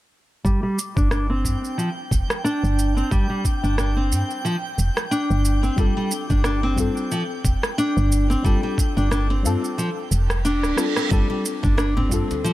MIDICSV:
0, 0, Header, 1, 7, 480
1, 0, Start_track
1, 0, Tempo, 666667
1, 321, Time_signature, 4, 2, 24, 8
1, 9022, End_track
2, 0, Start_track
2, 0, Title_t, "Synth texture"
2, 0, Program_c, 0, 99
2, 316, Note_on_c, 0, 79, 75
2, 8010, Note_off_c, 0, 79, 0
2, 9022, End_track
3, 0, Start_track
3, 0, Title_t, "Synth stab"
3, 0, Program_c, 1, 62
3, 457, Control_c, 1, 64, 127
3, 4148, Note_on_c, 1, 55, 78
3, 4157, Note_on_c, 1, 60, 72
3, 4165, Note_on_c, 1, 65, 74
3, 4174, Note_on_c, 1, 69, 86
3, 4850, Note_off_c, 1, 55, 0
3, 4854, Note_off_c, 1, 60, 0
3, 4858, Note_off_c, 1, 65, 0
3, 4863, Note_off_c, 1, 69, 0
3, 4866, Note_on_c, 1, 55, 81
3, 4875, Note_on_c, 1, 60, 73
3, 4885, Note_on_c, 1, 65, 67
3, 4895, Note_on_c, 1, 69, 87
3, 6048, Note_off_c, 1, 55, 0
3, 6053, Note_off_c, 1, 60, 0
3, 6058, Note_off_c, 1, 65, 0
3, 6063, Note_off_c, 1, 69, 0
3, 6065, Note_on_c, 1, 55, 77
3, 6074, Note_on_c, 1, 60, 76
3, 6083, Note_on_c, 1, 65, 76
3, 6092, Note_on_c, 1, 69, 95
3, 6768, Note_off_c, 1, 55, 0
3, 6772, Note_off_c, 1, 60, 0
3, 6777, Note_off_c, 1, 65, 0
3, 6782, Note_off_c, 1, 69, 0
3, 6787, Note_on_c, 1, 55, 76
3, 6797, Note_on_c, 1, 60, 68
3, 6805, Note_on_c, 1, 65, 72
3, 6815, Note_on_c, 1, 69, 89
3, 7733, Note_off_c, 1, 55, 0
3, 7738, Note_off_c, 1, 60, 0
3, 7742, Note_off_c, 1, 65, 0
3, 7747, Note_off_c, 1, 69, 0
3, 7751, Note_on_c, 1, 55, 79
3, 7754, Note_on_c, 1, 60, 72
3, 7759, Note_on_c, 1, 65, 71
3, 7766, Note_on_c, 1, 69, 85
3, 7971, Note_off_c, 1, 55, 0
3, 7972, Note_off_c, 1, 60, 0
3, 7975, Note_off_c, 1, 65, 0
3, 7978, Note_off_c, 1, 69, 0
3, 7985, Note_on_c, 1, 55, 79
3, 7996, Note_on_c, 1, 60, 72
3, 8007, Note_on_c, 1, 65, 74
3, 8012, Control_c, 1, 64, 0
3, 8013, Note_on_c, 1, 69, 93
3, 8158, Control_c, 1, 64, 127
3, 8688, Note_off_c, 1, 55, 0
3, 8693, Note_off_c, 1, 60, 0
3, 8699, Note_off_c, 1, 65, 0
3, 8702, Note_off_c, 1, 69, 0
3, 8706, Note_on_c, 1, 55, 83
3, 8717, Note_on_c, 1, 60, 72
3, 8726, Note_on_c, 1, 65, 73
3, 8737, Note_on_c, 1, 69, 87
3, 9022, Note_off_c, 1, 55, 0
3, 9022, Note_off_c, 1, 60, 0
3, 9022, Note_off_c, 1, 65, 0
3, 9022, Note_off_c, 1, 69, 0
3, 9022, End_track
4, 0, Start_track
4, 0, Title_t, "Nylon-string guitar"
4, 0, Program_c, 2, 24
4, 320, Note_on_c, 2, 55, 86
4, 444, Note_off_c, 2, 55, 0
4, 453, Note_on_c, 2, 55, 67
4, 554, Note_off_c, 2, 55, 0
4, 694, Note_on_c, 2, 62, 61
4, 790, Note_off_c, 2, 62, 0
4, 798, Note_on_c, 2, 62, 79
4, 921, Note_off_c, 2, 62, 0
4, 934, Note_on_c, 2, 60, 64
4, 1269, Note_off_c, 2, 60, 0
4, 1279, Note_on_c, 2, 53, 71
4, 1357, Note_off_c, 2, 53, 0
4, 1760, Note_on_c, 2, 62, 97
4, 2122, Note_off_c, 2, 62, 0
4, 2136, Note_on_c, 2, 60, 68
4, 2230, Note_off_c, 2, 60, 0
4, 2240, Note_on_c, 2, 55, 93
4, 2364, Note_off_c, 2, 55, 0
4, 2373, Note_on_c, 2, 55, 70
4, 2474, Note_off_c, 2, 55, 0
4, 2616, Note_on_c, 2, 62, 63
4, 2711, Note_off_c, 2, 62, 0
4, 2723, Note_on_c, 2, 62, 84
4, 2843, Note_off_c, 2, 62, 0
4, 2855, Note_on_c, 2, 60, 68
4, 3190, Note_off_c, 2, 60, 0
4, 3202, Note_on_c, 2, 53, 72
4, 3279, Note_off_c, 2, 53, 0
4, 3681, Note_on_c, 2, 62, 90
4, 4043, Note_off_c, 2, 62, 0
4, 4054, Note_on_c, 2, 60, 72
4, 4150, Note_off_c, 2, 60, 0
4, 4164, Note_on_c, 2, 55, 90
4, 4289, Note_off_c, 2, 55, 0
4, 4297, Note_on_c, 2, 55, 73
4, 4397, Note_off_c, 2, 55, 0
4, 4537, Note_on_c, 2, 62, 66
4, 4631, Note_off_c, 2, 62, 0
4, 4641, Note_on_c, 2, 62, 94
4, 4763, Note_off_c, 2, 62, 0
4, 4775, Note_on_c, 2, 60, 71
4, 5110, Note_off_c, 2, 60, 0
4, 5123, Note_on_c, 2, 53, 74
4, 5199, Note_off_c, 2, 53, 0
4, 5602, Note_on_c, 2, 62, 102
4, 5963, Note_off_c, 2, 62, 0
4, 5975, Note_on_c, 2, 60, 70
4, 6070, Note_off_c, 2, 60, 0
4, 6080, Note_on_c, 2, 55, 93
4, 6207, Note_off_c, 2, 55, 0
4, 6215, Note_on_c, 2, 55, 71
4, 6316, Note_off_c, 2, 55, 0
4, 6457, Note_on_c, 2, 62, 67
4, 6551, Note_off_c, 2, 62, 0
4, 6561, Note_on_c, 2, 62, 92
4, 6683, Note_off_c, 2, 62, 0
4, 6697, Note_on_c, 2, 60, 73
4, 7031, Note_off_c, 2, 60, 0
4, 7042, Note_on_c, 2, 53, 70
4, 7119, Note_off_c, 2, 53, 0
4, 7523, Note_on_c, 2, 62, 97
4, 7883, Note_off_c, 2, 62, 0
4, 7896, Note_on_c, 2, 60, 70
4, 7990, Note_off_c, 2, 60, 0
4, 8000, Note_on_c, 2, 55, 95
4, 8126, Note_off_c, 2, 55, 0
4, 8134, Note_on_c, 2, 55, 70
4, 8235, Note_off_c, 2, 55, 0
4, 8373, Note_on_c, 2, 62, 64
4, 8469, Note_off_c, 2, 62, 0
4, 8478, Note_on_c, 2, 62, 90
4, 8601, Note_off_c, 2, 62, 0
4, 8616, Note_on_c, 2, 60, 70
4, 8951, Note_off_c, 2, 60, 0
4, 8960, Note_on_c, 2, 53, 77
4, 9022, Note_off_c, 2, 53, 0
4, 9022, End_track
5, 0, Start_track
5, 0, Title_t, "FM bass"
5, 0, Program_c, 3, 39
5, 322, Note_on_c, 3, 31, 91
5, 407, Note_off_c, 3, 31, 0
5, 697, Note_on_c, 3, 31, 89
5, 1043, Note_on_c, 3, 43, 95
5, 1054, Note_off_c, 3, 31, 0
5, 1128, Note_off_c, 3, 43, 0
5, 1522, Note_on_c, 3, 29, 76
5, 1607, Note_off_c, 3, 29, 0
5, 1897, Note_on_c, 3, 31, 93
5, 2180, Note_off_c, 3, 31, 0
5, 2243, Note_on_c, 3, 31, 90
5, 2327, Note_off_c, 3, 31, 0
5, 2618, Note_on_c, 3, 31, 88
5, 2965, Note_on_c, 3, 43, 95
5, 2975, Note_off_c, 3, 31, 0
5, 3048, Note_off_c, 3, 43, 0
5, 3443, Note_on_c, 3, 29, 81
5, 3527, Note_off_c, 3, 29, 0
5, 3819, Note_on_c, 3, 31, 102
5, 4100, Note_off_c, 3, 31, 0
5, 4160, Note_on_c, 3, 31, 91
5, 4246, Note_off_c, 3, 31, 0
5, 4537, Note_on_c, 3, 31, 93
5, 4881, Note_on_c, 3, 43, 91
5, 4891, Note_off_c, 3, 31, 0
5, 4966, Note_off_c, 3, 43, 0
5, 5361, Note_on_c, 3, 29, 80
5, 5446, Note_off_c, 3, 29, 0
5, 5737, Note_on_c, 3, 31, 108
5, 6020, Note_off_c, 3, 31, 0
5, 6081, Note_on_c, 3, 31, 94
5, 6166, Note_off_c, 3, 31, 0
5, 6458, Note_on_c, 3, 31, 89
5, 6803, Note_on_c, 3, 43, 96
5, 6814, Note_off_c, 3, 31, 0
5, 6888, Note_off_c, 3, 43, 0
5, 7281, Note_on_c, 3, 29, 81
5, 7659, Note_on_c, 3, 26, 97
5, 7669, Note_off_c, 3, 29, 0
5, 7724, Note_off_c, 3, 26, 0
5, 8002, Note_on_c, 3, 31, 92
5, 8087, Note_off_c, 3, 31, 0
5, 8379, Note_on_c, 3, 31, 92
5, 8725, Note_on_c, 3, 43, 91
5, 8736, Note_off_c, 3, 31, 0
5, 8808, Note_off_c, 3, 43, 0
5, 9022, End_track
6, 0, Start_track
6, 0, Title_t, "Reverse cymbal"
6, 0, Program_c, 4, 119
6, 7042, Note_on_c, 4, 60, 73
6, 8001, Note_off_c, 4, 60, 0
6, 9022, End_track
7, 0, Start_track
7, 0, Title_t, "Drums"
7, 322, Note_on_c, 9, 36, 100
7, 328, Note_on_c, 9, 82, 39
7, 394, Note_off_c, 9, 36, 0
7, 400, Note_off_c, 9, 82, 0
7, 565, Note_on_c, 9, 82, 71
7, 637, Note_off_c, 9, 82, 0
7, 697, Note_on_c, 9, 36, 94
7, 700, Note_on_c, 9, 82, 27
7, 769, Note_off_c, 9, 36, 0
7, 772, Note_off_c, 9, 82, 0
7, 800, Note_on_c, 9, 37, 66
7, 805, Note_on_c, 9, 82, 37
7, 872, Note_off_c, 9, 37, 0
7, 877, Note_off_c, 9, 82, 0
7, 1042, Note_on_c, 9, 36, 51
7, 1047, Note_on_c, 9, 82, 66
7, 1114, Note_off_c, 9, 36, 0
7, 1119, Note_off_c, 9, 82, 0
7, 1185, Note_on_c, 9, 82, 27
7, 1257, Note_off_c, 9, 82, 0
7, 1289, Note_on_c, 9, 82, 42
7, 1361, Note_off_c, 9, 82, 0
7, 1522, Note_on_c, 9, 36, 93
7, 1528, Note_on_c, 9, 82, 69
7, 1594, Note_off_c, 9, 36, 0
7, 1600, Note_off_c, 9, 82, 0
7, 1658, Note_on_c, 9, 37, 77
7, 1662, Note_on_c, 9, 82, 31
7, 1730, Note_off_c, 9, 37, 0
7, 1734, Note_off_c, 9, 82, 0
7, 1768, Note_on_c, 9, 82, 40
7, 1840, Note_off_c, 9, 82, 0
7, 1904, Note_on_c, 9, 82, 27
7, 1976, Note_off_c, 9, 82, 0
7, 2008, Note_on_c, 9, 82, 66
7, 2080, Note_off_c, 9, 82, 0
7, 2142, Note_on_c, 9, 82, 28
7, 2214, Note_off_c, 9, 82, 0
7, 2242, Note_on_c, 9, 36, 112
7, 2244, Note_on_c, 9, 82, 43
7, 2314, Note_off_c, 9, 36, 0
7, 2316, Note_off_c, 9, 82, 0
7, 2483, Note_on_c, 9, 36, 86
7, 2485, Note_on_c, 9, 82, 72
7, 2555, Note_off_c, 9, 36, 0
7, 2557, Note_off_c, 9, 82, 0
7, 2622, Note_on_c, 9, 82, 30
7, 2694, Note_off_c, 9, 82, 0
7, 2722, Note_on_c, 9, 37, 71
7, 2726, Note_on_c, 9, 82, 38
7, 2794, Note_off_c, 9, 37, 0
7, 2798, Note_off_c, 9, 82, 0
7, 2967, Note_on_c, 9, 82, 76
7, 3039, Note_off_c, 9, 82, 0
7, 3100, Note_on_c, 9, 82, 29
7, 3172, Note_off_c, 9, 82, 0
7, 3208, Note_on_c, 9, 82, 42
7, 3280, Note_off_c, 9, 82, 0
7, 3447, Note_on_c, 9, 82, 73
7, 3519, Note_off_c, 9, 82, 0
7, 3578, Note_on_c, 9, 37, 79
7, 3582, Note_on_c, 9, 82, 33
7, 3650, Note_off_c, 9, 37, 0
7, 3654, Note_off_c, 9, 82, 0
7, 3686, Note_on_c, 9, 82, 43
7, 3758, Note_off_c, 9, 82, 0
7, 3821, Note_on_c, 9, 82, 28
7, 3893, Note_off_c, 9, 82, 0
7, 3924, Note_on_c, 9, 82, 72
7, 3996, Note_off_c, 9, 82, 0
7, 4059, Note_on_c, 9, 82, 30
7, 4131, Note_off_c, 9, 82, 0
7, 4160, Note_on_c, 9, 82, 42
7, 4161, Note_on_c, 9, 36, 110
7, 4232, Note_off_c, 9, 82, 0
7, 4233, Note_off_c, 9, 36, 0
7, 4401, Note_on_c, 9, 82, 75
7, 4473, Note_off_c, 9, 82, 0
7, 4536, Note_on_c, 9, 36, 101
7, 4536, Note_on_c, 9, 82, 31
7, 4608, Note_off_c, 9, 36, 0
7, 4608, Note_off_c, 9, 82, 0
7, 4637, Note_on_c, 9, 37, 73
7, 4641, Note_on_c, 9, 82, 41
7, 4709, Note_off_c, 9, 37, 0
7, 4713, Note_off_c, 9, 82, 0
7, 4880, Note_on_c, 9, 36, 58
7, 4881, Note_on_c, 9, 82, 71
7, 4952, Note_off_c, 9, 36, 0
7, 4953, Note_off_c, 9, 82, 0
7, 5018, Note_on_c, 9, 82, 31
7, 5090, Note_off_c, 9, 82, 0
7, 5122, Note_on_c, 9, 82, 46
7, 5194, Note_off_c, 9, 82, 0
7, 5361, Note_on_c, 9, 36, 99
7, 5364, Note_on_c, 9, 82, 75
7, 5433, Note_off_c, 9, 36, 0
7, 5436, Note_off_c, 9, 82, 0
7, 5496, Note_on_c, 9, 37, 78
7, 5500, Note_on_c, 9, 82, 34
7, 5568, Note_off_c, 9, 37, 0
7, 5572, Note_off_c, 9, 82, 0
7, 5605, Note_on_c, 9, 82, 43
7, 5677, Note_off_c, 9, 82, 0
7, 5742, Note_on_c, 9, 82, 29
7, 5814, Note_off_c, 9, 82, 0
7, 5846, Note_on_c, 9, 82, 75
7, 5918, Note_off_c, 9, 82, 0
7, 5984, Note_on_c, 9, 82, 31
7, 6056, Note_off_c, 9, 82, 0
7, 6081, Note_on_c, 9, 36, 110
7, 6088, Note_on_c, 9, 82, 42
7, 6153, Note_off_c, 9, 36, 0
7, 6160, Note_off_c, 9, 82, 0
7, 6322, Note_on_c, 9, 36, 98
7, 6329, Note_on_c, 9, 82, 77
7, 6394, Note_off_c, 9, 36, 0
7, 6401, Note_off_c, 9, 82, 0
7, 6462, Note_on_c, 9, 82, 29
7, 6534, Note_off_c, 9, 82, 0
7, 6563, Note_on_c, 9, 37, 68
7, 6567, Note_on_c, 9, 82, 43
7, 6635, Note_off_c, 9, 37, 0
7, 6639, Note_off_c, 9, 82, 0
7, 6807, Note_on_c, 9, 82, 72
7, 6879, Note_off_c, 9, 82, 0
7, 6943, Note_on_c, 9, 82, 34
7, 7015, Note_off_c, 9, 82, 0
7, 7047, Note_on_c, 9, 82, 45
7, 7119, Note_off_c, 9, 82, 0
7, 7284, Note_on_c, 9, 82, 75
7, 7356, Note_off_c, 9, 82, 0
7, 7416, Note_on_c, 9, 37, 76
7, 7420, Note_on_c, 9, 82, 35
7, 7488, Note_off_c, 9, 37, 0
7, 7492, Note_off_c, 9, 82, 0
7, 7526, Note_on_c, 9, 82, 43
7, 7598, Note_off_c, 9, 82, 0
7, 7656, Note_on_c, 9, 37, 45
7, 7661, Note_on_c, 9, 82, 31
7, 7728, Note_off_c, 9, 37, 0
7, 7733, Note_off_c, 9, 82, 0
7, 7758, Note_on_c, 9, 37, 73
7, 7762, Note_on_c, 9, 82, 74
7, 7830, Note_off_c, 9, 37, 0
7, 7834, Note_off_c, 9, 82, 0
7, 7894, Note_on_c, 9, 37, 74
7, 7899, Note_on_c, 9, 82, 31
7, 7966, Note_off_c, 9, 37, 0
7, 7971, Note_off_c, 9, 82, 0
7, 8003, Note_on_c, 9, 36, 110
7, 8005, Note_on_c, 9, 82, 43
7, 8075, Note_off_c, 9, 36, 0
7, 8077, Note_off_c, 9, 82, 0
7, 8247, Note_on_c, 9, 82, 77
7, 8319, Note_off_c, 9, 82, 0
7, 8378, Note_on_c, 9, 36, 94
7, 8382, Note_on_c, 9, 82, 30
7, 8450, Note_off_c, 9, 36, 0
7, 8454, Note_off_c, 9, 82, 0
7, 8482, Note_on_c, 9, 37, 74
7, 8486, Note_on_c, 9, 82, 42
7, 8554, Note_off_c, 9, 37, 0
7, 8558, Note_off_c, 9, 82, 0
7, 8621, Note_on_c, 9, 64, 80
7, 8693, Note_off_c, 9, 64, 0
7, 8723, Note_on_c, 9, 36, 55
7, 8724, Note_on_c, 9, 82, 75
7, 8795, Note_off_c, 9, 36, 0
7, 8796, Note_off_c, 9, 82, 0
7, 8861, Note_on_c, 9, 82, 31
7, 8862, Note_on_c, 9, 62, 63
7, 8864, Note_on_c, 9, 63, 77
7, 8933, Note_off_c, 9, 82, 0
7, 8934, Note_off_c, 9, 62, 0
7, 8936, Note_off_c, 9, 63, 0
7, 8968, Note_on_c, 9, 82, 44
7, 9022, Note_off_c, 9, 82, 0
7, 9022, End_track
0, 0, End_of_file